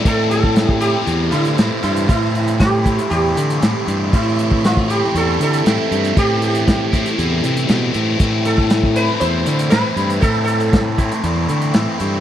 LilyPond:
<<
  \new Staff \with { instrumentName = "Sitar" } { \time 4/4 \key a \minor \tempo 4 = 118 a'8 a'4 g'4 e'4 e'8 | e'4 g'4 g'4. r8 | e'4 f'8 g'8 a'8 a'4. | g'8 g'2 r4. |
r8 a'4 b'8 c''4 b'4 | a'8 a'2. r8 | }
  \new Staff \with { instrumentName = "Overdriven electric guitar" } { \time 4/4 \key a \minor <a, e a c' e'>4. <a c' e'>8 <a, e a c' e'>8 <a c' e'>8 <e a c' e'>8 <a c' e'>8 | <a, e a c' e'>4. <a c' e'>8 <a, e a c' e'>8 <a c' e'>8 <e a c' e'>8 <a c' e'>8 | <a, e a c' e'>4. <a c' e'>8 <a, e a c' e'>8 <a c' e'>8 <e a c' e'>8 <a c' e'>8 | <a, e a c' e'>4. <a c' e'>8 <a, e a c' e'>8 <a c' e'>8 <e a c' e'>8 <a c' e'>8 |
<a, e a c' e'>4. <a c' e'>8 <a, e a c' e'>8 <a c' e'>8 <e a c' e'>8 <a c' e'>8 | <a, e a c' e'>4. <a c' e'>8 <a, e a c' e'>8 <a c' e'>8 <e a c' e'>8 <a c' e'>8 | }
  \new Staff \with { instrumentName = "Fingered electric bass" } { \clef bass \time 4/4 \key a \minor a,2 e,8 d8 a,16 r16 g,8 | a,2 e,8 d8 a,16 r16 g,8 | a,2 e,8 d8 a,16 r16 g,8 | a,2 e,8 c8 b,8 a,8 |
a,2 e,8 d8 a,16 r16 g,8 | a,2 e,8 d8 a,16 r16 g,8 | }
  \new DrumStaff \with { instrumentName = "Drums" } \drummode { \time 4/4 <hh bd>8 hh16 bd16 <hh sn>16 bd16 hh8 hh8 hh16 hh16 <hh sn>8 hh16 hh16 | <hh bd>8 hh16 hh16 <hh bd sn>8 <hh bd>16 hh16 hh8 hh16 hh16 <hh sn>8 hh8 | <hh bd>8 hh16 bd16 <hh sn>16 bd16 hh16 sn16 hh8 hh16 hh16 <hh sn>8 hh16 hh16 | <hh bd>8 hh16 hh16 <hh bd sn>8 <hh bd>16 hh16 hh8 hh16 hh16 <hh sn>8 hh8 |
<hh bd>8 hh16 bd16 <hh sn>16 bd16 hh8 hh8 hh16 hh16 <hh sn>8 hh16 hh16 | <hh bd>8 hh16 hh16 <hh bd sn>8 <hh bd>16 hh16 hh8 hh16 hh16 <hh sn>8 hh8 | }
>>